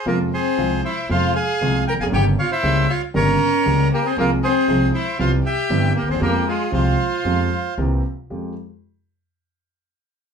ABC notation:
X:1
M:4/4
L:1/16
Q:1/4=116
K:Fm
V:1 name="Bandoneon"
[FB]2 [Ac]4 [c=e]2 [cf]2 [fa]4 [gb] [fa] | [dg]2 [df] [c=e]3 [df]2 [Bd]6 [GB] [Ac] | [FB]2 [Ac]4 [c=e]2 [cf]2 [eg]4 [GB] [Ac] | [GB]2 [FA]2 [cf]8 z4 |
z16 |]
V:2 name="Violin"
B,2 C4 =E2 F2 A4 B A | G2 F =E3 F2 D6 B, C | B,2 C4 =E2 F2 G4 B, C | B,2 A,2 F8 z4 |
z16 |]
V:3 name="Grand piano" clef=bass
[F,,C,F,A,F]2 z2 [C,,C,F,A,F]2 z2 [F,,C,F,A,F]2 z2 [C,,C,F,A,F]2 z/2 =E,,/2 F,,/2 _G,,/2 | [G,,,G,,D,G,B,G]2 z2 [D,,D,G,B,G]2 z2 [G,,,G,,D,G,B,G]2 z2 [D,,D,G,B,G]2 z2 | [C,,C,F,A,CA]2 z2 [C,,C,F,A,CA]2 z2 [C,,C,=E,G,CG]2 z2 [G,,,G,,E,G,CG]2 z/2 =D,,/2 _E,,/2 =E,,/2 | [F,,F,A,CG]2 z2 [C,,C,F,A,CG]2 z2 [F,,F,A,CG]2 z2 [C,,C,=E,B,CG]2 z2 |
[F,,A,FG]2 z12 z2 |]
V:4 name="Upright bass" clef=bass
F,,3/2 z2 z/2 C,,3/2 z2 z/2 F,,3/2 z2 z/2 C,,3/2 z =E,,,/2 F,,,/2 _G,,,/2 | G,,,3/2 z2 z/2 D,,3/2 z2 z/2 G,,,3/2 z2 z/2 D,,3/2 z2 z/2 | C,,3/2 z2 z/2 C,,3/2 z2 z/2 C,,3/2 z2 z/2 G,,,3/2 z =D,,/2 E,,/2 =E,,/2 | F,,3/2 z2 z/2 C,,3/2 z2 z/2 F,,3/2 z2 z/2 C,,3/2 z2 z/2 |
F,,2 z12 z2 |]